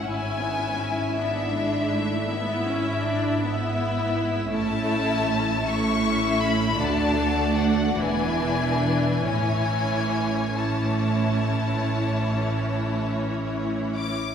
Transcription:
<<
  \new Staff \with { instrumentName = "Violin section" } { \time 12/8 \key a \major \tempo 4. = 52 gis''4. e''1 r8 | a''4. cis'''4 b''8 a''4 fis''8 gis''4. | gis''4. a''2. r4 d'''8 | }
  \new Staff \with { instrumentName = "Violin section" } { \time 12/8 \key a \major << { e''2. e''4. e''4. | e''4. e''4. d''4. b'4. | cis''4. cis''1~ cis''16 r16 | } \\ { e'1~ e'8 e'4. | e'4. e'4. fis'4. e'4. | e'4. e'1~ e'16 r16 | } >> }
  \new Staff \with { instrumentName = "Viola section" } { \time 12/8 \key a \major << { e'8 b8 cis'8 d'4. e'4. e'4. | cis'4. cis'4. d'4. d'4. | cis'4. cis'1~ cis'16 r16 | } \\ { cis'4. b8 gis8 a8 b8 cis'8 d'8 b4. | a4. a4. a4. e4. | e4. e1~ e16 r16 | } >> }
  \new Staff \with { instrumentName = "Cello section" } { \clef bass \time 12/8 \key a \major gis,1. | a,2. d,4. e,4. | a,1~ a,4.~ a,16 r16 | }
  \new Staff \with { instrumentName = "Double bass section" } { \clef bass \time 12/8 \key a \major gis,,1. | a,,2. d,4. e,,4. | a,,1~ a,,4.~ a,,16 r16 | }
>>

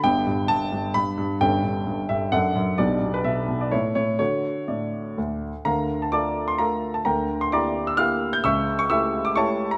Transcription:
<<
  \new Staff \with { instrumentName = "Grand piano" } { \time 3/4 \key d \major \tempo 4 = 130 << { g''4 a''4 b''4 | g''4. e''8 fis''4 | d''8. b'16 e''8. d''16 cis''8 cis''8 | cis''4 d''4. r8 |
\key d \minor <bes' f'' bes''>8. a''16 <d'' a'' d'''>8. c'''16 <bes' bes''>8. a''16 | <bes' g'' bes''>8. c'''16 <d'' bes'' d'''>8. e'''16 <f'' f'''>8. g'''16 | <e'' cis''' e'''>8. cis'''16 <e'' cis''' e'''>8. d'''16 <cis'' a'' cis'''>8. bes''16 | } \\ { <b g'>2. | <cis' a'>2 <d' a'>4 | <d' g'>2 <e' a'>4 | r2. |
r2. | r2. | r2. | } >> }
  \new Staff \with { instrumentName = "Grand piano" } { \clef bass \time 3/4 \key d \major <g,, g,>8 g,8 g,8 g,8 g,8 g,8 | <g,, g,>8 g,8 g,8 g,8 fis,8 fis,8 | <b,, b,>8 b,8 b,8 b,8 a,8 a,8 | <d fis' a'>4 a,4 d,4 |
\key d \minor <d, d>4 <a f' a'>4 <a f' a'>4 | <d, d>4 <bes e' g'>4 <bes e' g'>4 | <cis, cis>4 <a e' g'>4 <a e' g'>4 | }
>>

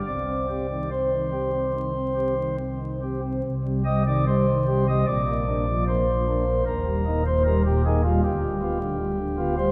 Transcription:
<<
  \new Staff \with { instrumentName = "Pipe organ" } { \time 4/4 \key c \minor \tempo 4 = 75 d''4 c''2 r4 | r8 ees''16 d''16 c''8. ees''16 d''4 c''4 | bes'8. c''16 bes'16 g'16 aes'16 f'16 g'4.~ g'16 c''16 | }
  \new Staff \with { instrumentName = "Pipe organ" } { \clef bass \time 4/4 \key c \minor << { c16 c'16 <c' g'>16 ees16 c'16 ees16 <c' g'>16 c'16 ees16 c'16 <c' g'>16 ees16 c'16 ees16 <c' g'>16 c'16 | c16 g16 <g g'>16 ees16 g16 ees16 <g g'>16 g16 bes,16 bes16 <bes d'>16 f16 bes16 f16 <bes d'>16 bes16 | ees,16 g16 <bes ees'>16 bes,16 g16 bes,16 <bes ees'>16 g16 d,16 g16 <b f'>16 d16 g16 d16 <b f'>16 g16 | } \\ { c,1 | c,2 bes,,2 | ees,,2 d,,2 | } >> }
>>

